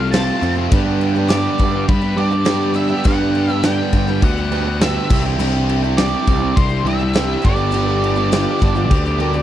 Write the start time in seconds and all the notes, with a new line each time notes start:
Already playing: C2 F3 A3 C4 F4 A4 C5 F5
0.00 C4 F4, muted overdriven electric guitar stroke
0.11 F2 C3 F3 A3 C4 F4 A4 A5, snare, crash
0.16 F4
0.30 F3 A3 C4 F4
0.41 F2 F3 A3 C4 F4 A4, crash
0.55 C4 F4 A4
0.59 F3 A3 C4
0.71 G2 D3 G3 B3 D4 G4 B4, kick, crash
0.86 G3 B3 D4 G4
1.01 G3 B3 D4 G4, crash
1.15 G3 B3 D4 G4 B4
1.19 G3 B3
1.28 G2 D3 G3 B3 D4 B4 D5, snare, crash
1.33 G4
1.46 G3 B3 D4 G4
1.58 G2 G3 B3 D4 B4, muted overdriven electric guitar stroke, kick, crash
1.62 D4 G4
1.74 G3 B3 D4 G4, muted overdriven electric guitar stroke
1.88 G2 G3 B3 D4 G4 B4, kick, crash
2.01 G3 B3 D4 G4 B4
2.05 G3
2.17 G2 G3 B3 D4 G4 D5, crash
2.31 G3 B3 D4 B4, muted overdriven electric guitar stroke
2.45 G2 D3 G3 B3 D4 B4, snare, crash
2.49 D3 G3 B3 D4 G4
2.63 G3 B3 D4 G4
2.74 G3 B3 D4 G4 B4 E5, crash
2.88 G3 B3 D4 B4
2.93 G3 B3 D4 G4
3.04 G2 D3 G3 B3 D4 G4 B4 F#5, kick, crash
3.08 D3 G3 D4 G4
3.20 G3 B3 D4 G4
3.35 G3 B3 D4 G4, crash
3.48 G3 B3 D4 G4 B4 E5
3.53 G3
3.63 G2 D3 G3 B3 D4 B4 G5, snare, crash
3.67 G4
3.79 G3 B3 D4 G4
3.93 G2 G3 B3 D4 G4 B4, muted overdriven electric guitar stroke, kick, crash
4.07 G3 B3 D4 G4 B4, muted overdriven electric guitar stroke
4.22 D2 G3 B3 D4 G4 F#5, kick, crash
4.37 G3 B3 D4 G4 B4
4.52 G3 B3 D4 G4, crash
4.67 muted overdriven electric guitar stroke
4.81 G2 D3 G3 B3 D4 G4 B4 E5, snare, crash
4.95 G3 B3 D4 G4
5.09 C2 C3 E3 G3 C4 D4 E4 G4 C5, kick, crash
5.23 D4 E4 G4
5.28 G3 C4
5.39 C2 C3 E3 G3 C4 D4 E4 G4, crash
5.53 G3 E4 G4
5.68 G3 C4 E4 G4, crash
5.83 G3 D4 E4 G4
5.97 C3 E3 G3 C4 D4 E4 G4 D5, snare, crash
6.02 G4
6.14 C4 E4 G4
6.26 C2 E3 G3 D4 E4 G4, kick, crash
6.30 muted overdriven electric guitar stroke
6.42 C4 E4 G4, muted overdriven electric guitar stroke
6.56 C2 G3 C4 E4 G4 C5, kick, crash
6.69 D4 E4 G4
6.74 C4
6.84 C2 E3 G3 C4 E4 G4 E5, crash
6.99 D4 E4 G4, muted overdriven electric guitar stroke
7.13 C3 E3 G3 C4 D4 E4 G4, snare, crash
7.31 C4 E4 G4
7.42 G1 G2 D3 G3 B3 D4 G4 B4 D5, kick, crash
7.46 D4 G4
7.56 G3 B3 D4 G4
7.61 G3 B3 D4 G4
7.71 G2 D3 G3 B3 D4 G4, crash
7.75 G2 D3 G3 B3 D4 G4
7.87 G3 B3 D4 G4
8.04 G3 B3 D4 G4, crash
8.15 G3 B3 D4 G4
8.20 G3
8.32 G2 D3 G3 B3 D4 F4 G4, snare, crash
8.48 G3 B3 D4 G4
8.59 G1 G3 B3 D4, muted overdriven electric guitar stroke, kick, crash
8.63 D4 G4
8.75 G3 B3 D4 F4 G4, muted overdriven electric guitar stroke
8.89 D2 G3 B3 D4 G4, kick, crash
9.05 G3 B3 D4 G4
9.19 G3 B3 D4 G4 A#4, crash
9.32 B3 D4 G4 D5, muted overdriven electric guitar stroke
9.37 G3